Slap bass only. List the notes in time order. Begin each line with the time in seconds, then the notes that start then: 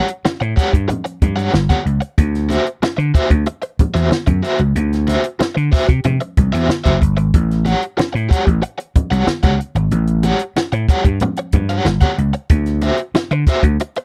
0.25 muted slap bass stroke
0.41 A2
0.73 G2
1.22 G2
1.54 G1
1.86 C#2
2.18 D2
2.83 muted slap bass stroke
2.98 D3
3.30 D2
3.79 muted slap bass stroke
3.95 E2
4.11 muted slap bass stroke
4.27 F#2
4.59 C#2
4.75 D2
5.40 muted slap bass stroke
5.57 D3
5.89 C3
6.05 C3
6.37 C2
6.54 E2
6.86 F#1
7.02 G1
7.17 G#1
7.34 A1
7.99 muted slap bass stroke
8.15 A2
8.47 A1
8.96 muted slap bass stroke
9.11 C2
9.27 muted slap bass stroke
9.44 C#2
9.75 G#1
9.91 A1
10.56 muted slap bass stroke
10.72 A2
11.05 G2
11.53 G2
11.86 G1
12.18 C#2
12.50 D2
13.14 muted slap bass stroke
13.31 D3
13.63 D2